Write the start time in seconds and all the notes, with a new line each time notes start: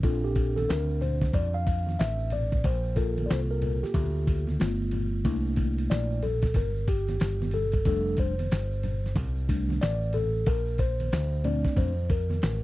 0.03 A#1 C4 D4 F4 A4, kick, ride, shaker
0.24 G4, shaker
0.35 kick, ride, shaker
0.56 A4, ride, high conga, shaker
0.69 D2 A#4, snare, hi-hat pedal, ride, shaker
0.89 shaker
1.01 C5, ride, low conga, shaker
1.22 kick, snare, shaker
1.33 F2 D5, kick, ride, low conga, shaker
1.54 F5, shaker
1.66 kick, ride, shaker
1.86 snare, high conga, shaker
1.98 A1 E5, snare, hi-hat pedal, ride, shaker
2.19 shaker
2.30 D5, ride, low conga, shaker
2.51 kick, shaker
2.64 A#1 C5, kick, ride, shaker
2.85 shaker
2.96 A#3 F4 A4 A#4, kick, ride, shaker
3.18 ride, high conga, shaker
3.26 D5, hi-hat pedal, ride, shaker
3.30 C2 C5, snare
3.50 A#4, shaker
3.62 ride, low conga, shaker
3.83 G4, muted picked electric bass stroke, snare, shaker
3.94 D2, kick, ride, low conga, shaker
4.15 shaker
4.27 kick, ride, shaker
4.47 snare, high conga, shaker
4.59 G1 A3 B3 F4, snare, hi-hat pedal, ride, shaker
4.80 shaker
4.91 ride, low conga, shaker
5.12 shaker
5.24 C2 A3 A#3 D4 E4, kick, ride, shaker
5.45 shaker
5.56 kick, ride, high conga, shaker
5.78 ride, shaker
5.90 A#1 D5, snare, hi-hat pedal, ride, shaker
6.10 shaker
6.22 A4, ride, low conga, shaker
6.42 kick, snare, ride, shaker
6.54 G1 A#4, kick, ride, high conga, low conga, shaker
6.76 shaker
6.88 G4, kick, ride, shaker
7.08 snare, ride, high conga, shaker
7.20 G1, snare, hi-hat pedal, ride, shaker
7.42 snare, high conga, shaker
7.51 A4, ride, low conga, shaker
7.72 kick, ride, shaker
7.85 F1 G3 A3 D4 A4, kick, ride, shaker
8.07 shaker
8.17 C5, kick, ride, shaker
8.39 ride, high conga, shaker
8.51 G1, snare, hi-hat pedal, ride, shaker
8.71 shaker
8.83 ride, low conga, shaker
9.04 snare, shaker
9.15 C2, kick, ride, low conga, shaker
9.36 shaker
9.48 G3 A3 D4, kick, ride, shaker
9.69 snare, high conga, shaker
9.81 A1 D5, snare, hi-hat pedal, ride, shaker
10.02 shaker
10.13 A4, ride, low conga, shaker
10.35 shaker
10.46 A#1 A#4, kick, ride, shaker
10.68 shaker
10.78 C5, kick, ride, shaker
11.00 ride, high conga, shaker
11.12 D2, snare, hi-hat pedal, ride, shaker
11.32 shaker
11.44 A3 C4 D4 D5, ride, low conga, shaker
11.65 muted picked electric bass stroke, kick, snare, shaker
11.77 F2 C5, kick, ride, low conga, shaker
11.97 shaker
12.09 A#4, kick, ride, shaker
12.30 snare, high conga, shaker
12.42 A1, snare, hi-hat pedal, ride, shaker